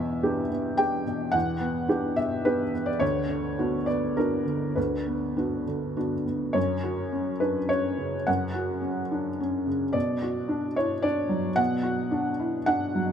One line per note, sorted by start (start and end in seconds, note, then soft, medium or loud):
0.00 1.30 E2 medium
0.00 0.40 B2 soft
0.00 0.78 E5 medium
0.23 0.48 B3 soft
0.23 0.48 D4 soft
0.23 0.48 G4 soft
0.50 0.76 B3 soft
0.77 1.03 B3 soft
0.77 1.04 D4 soft
0.77 1.04 G4 soft
0.77 1.34 G5 medium
1.06 1.51 B2 soft
1.32 2.96 E2 medium
1.32 2.16 F#5 medium
1.60 1.87 B3 soft
1.88 2.14 B3 soft
1.88 2.14 D4 soft
1.88 2.14 G4 soft
2.16 2.62 B2 soft
2.16 2.45 E5 medium
2.45 2.71 B3 soft
2.45 2.71 D4 soft
2.45 2.71 G4 soft
2.45 2.87 B4 medium
2.74 3.02 B3 soft
2.86 3.01 D5 medium
3.00 4.72 D2 medium
3.00 3.86 C#5 medium
3.29 3.75 D3 soft
3.58 3.84 B3 soft
3.58 3.85 D4 soft
3.58 3.85 F#4 soft
3.86 4.16 B3 soft
3.86 4.16 D5 medium
4.17 4.44 B3 soft
4.17 4.44 D4 soft
4.17 4.44 F#4 soft
4.17 4.77 A#4 medium
4.46 4.94 D3 soft
4.75 6.52 D2 soft
4.75 5.96 B4 soft
5.07 5.35 B3 soft
5.37 5.64 B3 soft
5.37 5.64 D4 soft
5.37 5.64 F#4 soft
5.67 6.14 D3 soft
5.97 6.23 B3 soft
5.97 6.24 D4 soft
5.97 6.24 F#4 soft
6.26 6.56 B3 soft
6.53 8.23 F#2 soft
6.53 7.40 C#5 medium
6.83 7.29 F#4 soft
7.13 7.58 C#4 soft
7.40 7.69 D4 soft
7.40 7.69 B4 medium
7.69 8.16 C#4 soft
7.69 8.27 C#5 medium
7.98 8.44 C#3 soft
8.27 9.91 F#2 soft
8.27 9.67 F#5 medium
8.54 9.00 F#4 soft
8.82 9.27 C#4 soft
9.11 9.39 D4 soft
9.40 9.84 C#4 soft
9.67 9.94 C#3 soft
9.93 11.54 B2 medium
9.93 10.76 D5 medium
10.22 10.66 F#4 soft
10.48 10.93 D4 soft
10.76 11.05 E4 soft
10.76 11.04 C#5 medium
11.02 11.47 D4 soft
11.02 11.58 D5 medium
11.29 11.74 F#3 soft
11.56 13.12 B2 medium
11.56 12.65 F#5 medium
11.83 12.29 F#4 soft
12.11 12.57 D4 soft
12.39 12.68 E4 soft
12.66 13.12 D4 medium
12.66 13.12 F#5 medium
12.95 13.12 F#3 soft